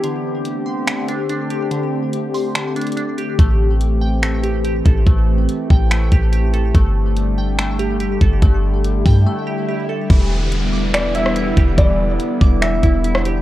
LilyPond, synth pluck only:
\new Staff \with { instrumentName = "Synth pluck" } { \time 4/4 \key e \minor \tempo 4 = 143 d4. c'''8 d8 d'8 d'8 g'8 | d4. c'''8 d8 d'8 d'8 g'8 | a4. g''8 a8 g'8 g'8 a'8 | a4. g''8 a8 g'8 g'8 a'8 |
a4. g''8 a8 g'8 g'8 a'8 | a4. g''8 a8 g'8 g'8 a'8 | e4. d'''8 e8 e'8 e'8 g'8 | e4. d'''8 e8 e'8 e'8 g'8 | }